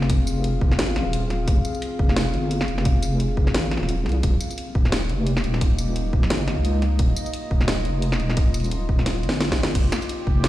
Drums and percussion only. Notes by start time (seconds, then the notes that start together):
0.02 snare
0.10 kick, closed hi-hat
0.27 tambourine
0.44 closed hi-hat
0.61 kick
0.71 snare
0.79 snare, closed hi-hat
0.96 snare, closed hi-hat
1.13 closed hi-hat
1.30 snare, closed hi-hat
1.48 kick, closed hi-hat
1.65 tambourine
1.75 tambourine
1.82 closed hi-hat
1.99 kick
2.09 snare
2.16 snare, closed hi-hat
2.34 closed hi-hat
2.51 closed hi-hat
2.61 snare
2.68 closed hi-hat
2.78 snare
2.85 kick, closed hi-hat
3.03 closed hi-hat, tambourine
3.20 closed hi-hat
3.37 kick
3.47 snare
3.54 snare, closed hi-hat
3.71 snare, closed hi-hat
3.77 snare
3.83 snare
3.89 closed hi-hat
4.06 snare, closed hi-hat
4.09 closed hi-hat
4.12 closed hi-hat
4.23 kick, closed hi-hat
4.41 tambourine
4.51 tambourine
4.58 closed hi-hat
4.75 kick
4.85 snare
4.92 snare, closed hi-hat
5.09 closed hi-hat
5.27 closed hi-hat
5.37 snare
5.44 closed hi-hat
5.54 snare
5.61 kick, closed hi-hat
5.78 tambourine
5.96 closed hi-hat
6.13 kick
6.23 snare
6.30 snare, closed hi-hat
6.48 snare, closed hi-hat
6.65 closed hi-hat
6.82 snare, closed hi-hat
6.99 kick, closed hi-hat
7.16 tambourine
7.26 tambourine
7.33 closed hi-hat
7.51 kick
7.61 snare
7.68 snare, closed hi-hat
7.85 closed hi-hat
8.02 closed hi-hat
8.12 snare
8.20 closed hi-hat
8.30 snare
8.37 kick, closed hi-hat
8.54 closed hi-hat, tambourine
8.60 closed hi-hat
8.64 closed hi-hat, tambourine
8.71 closed hi-hat
8.89 kick
8.99 snare
9.06 snare, closed hi-hat
9.23 closed hi-hat
9.29 snare
9.41 snare, closed hi-hat
9.51 kick, snare
9.58 closed hi-hat
9.63 snare
9.75 kick, closed hi-hat, crash
9.92 snare, tambourine
10.02 tambourine
10.09 closed hi-hat
10.27 kick
10.44 snare, closed hi-hat